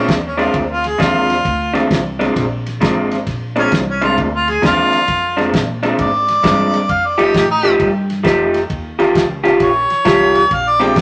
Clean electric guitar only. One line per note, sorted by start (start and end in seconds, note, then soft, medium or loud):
0.00 0.17 A#2 medium
0.00 0.17 G#3 medium
0.00 0.17 C4 medium
0.00 0.17 D4 medium
0.37 0.63 A#2 medium
0.37 0.63 G#3 medium
0.37 0.63 C4 medium
0.37 0.62 D4 medium
0.98 1.33 A#2 medium
0.98 1.34 G#3 medium
0.98 1.34 C4 medium
0.98 1.34 D4 medium
1.74 1.99 A#2 medium
1.74 1.99 G#3 medium
1.74 1.99 C4 medium
1.74 1.99 D4 medium
2.19 2.45 A#2 medium
2.19 2.45 G#3 medium
2.19 2.44 C4 medium
2.19 2.44 D4 medium
2.81 3.15 A#2 medium
2.81 3.16 G#3 medium
2.81 3.16 C4 medium
2.81 3.16 D4 medium
3.56 3.81 A#2 medium
3.56 3.81 G#3 medium
3.56 3.81 C4 medium
3.56 3.81 D4 medium
4.01 4.27 A#2 medium
4.01 4.27 G#3 medium
4.01 4.26 C4 medium
4.01 4.26 D4 medium
4.62 4.97 A#2 medium
4.62 4.97 G#3 medium
4.62 4.97 C4 medium
4.62 4.97 D4 loud
5.37 5.62 A#2 medium
5.37 5.62 G#3 medium
5.37 5.62 C4 medium
5.37 5.62 D4 medium
5.83 6.08 A#2 medium
5.83 6.08 G#3 medium
5.83 6.07 C4 loud
5.83 6.07 D4 loud
6.43 6.78 A#2 medium
6.43 6.78 G#3 medium
6.43 6.78 C4 medium
6.43 6.78 D4 loud
7.18 7.43 F3 medium
7.18 7.43 A3 medium
7.18 7.43 D#4 medium
7.18 7.43 G4 medium
7.63 7.89 F3 medium
7.63 7.88 A3 medium
7.63 7.88 D#4 medium
7.63 7.88 G4 loud
8.23 8.58 F3 medium
8.23 8.59 A3 medium
8.23 8.59 D#4 medium
8.23 8.59 G4 medium
8.99 9.24 D#3 medium
8.99 9.24 C#4 medium
8.99 9.24 F4 medium
8.99 9.24 G4 medium
9.44 9.69 D#3 medium
9.44 9.69 C#4 loud
9.44 9.69 F4 loud
9.44 9.69 G4 loud
10.05 10.40 D#3 medium
10.05 10.40 C#4 medium
10.05 10.40 F4 medium
10.05 10.40 G4 loud
10.80 11.01 A#2 medium
10.80 11.01 G#3 medium
10.80 11.01 C4 medium
10.80 11.01 D4 medium